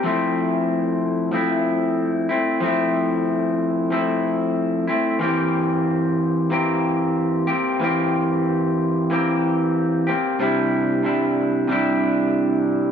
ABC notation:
X:1
M:4/4
L:1/8
Q:"Swing 16ths" 1/4=93
K:Cmix
V:1 name="Clean electric guitar"
[F,A,CE]4 [F,A,CE]3 [A,CE] | [F,A,CE]4 [F,A,CE]3 [A,CE] | [E,B,CG]4 [E,B,CG]3 [B,CG] | [E,B,CG]4 [E,B,CG]3 [B,CG] |
[C,G,DE]2 [C,G,DE]2 [C,G,DE]4 |]